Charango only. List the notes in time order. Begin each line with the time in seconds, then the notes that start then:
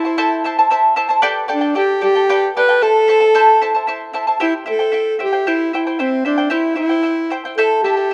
0.05 E4 C5 A5
0.18 E4 A4 C5 E5 A5
0.44 E4 C5 E5 A5
0.59 E4 C5 A5
0.70 E4 C5 E5 A5
0.96 E4 C5 E5 A5
1.09 E4 C5 A5
1.22 G4 A4 B4 D5 G5
1.48 G4 A4 D5 G5
1.61 G4 A4 G5
1.75 G4 A4 D5 G5
2.01 G4 A4 D5 G5
2.15 G4 A4 G5
2.29 G4 A4 B4 D5 G5
2.57 G4 A4 D5 G5
2.69 G4 A4 G5
2.82 E4 C5 E5 A5
3.08 E4 C5 E5 A5
3.20 E4 C5 A5
3.35 E4 A4 C5 E5 A5
3.61 E4 C5 E5 A5
3.75 E4 C5 A5
3.87 E4 C5 E5 A5
4.13 E4 C5 E5 A5
4.27 E4 C5 A5
4.40 E4 G4 C5 E5 G5
4.66 E4 C5 E5 G5
4.79 E4 C5 G5
4.92 E4 C5 E5 G5
5.19 E4 C5 E5 G5
5.33 E4 C5 G5
5.47 E4 G4 C5 E5 G5
5.73 E4 C5 E5 G5
5.87 E4 C5 G5
5.99 E4 C5 E5 G5
6.25 E4 C5 E5 G5
6.38 E4 C5 G5
6.50 E4 G4 C5 E5 G5
6.75 E4 C5 E5 G5
6.89 E4 C5 G5
7.03 E4 C5 E5 G5
7.30 E4 C5 E5 G5
7.45 E4 C5 G5
7.58 E4 A4 C5 E5 A5
7.84 E4 A4 E5 A5
7.97 E4 A4 A5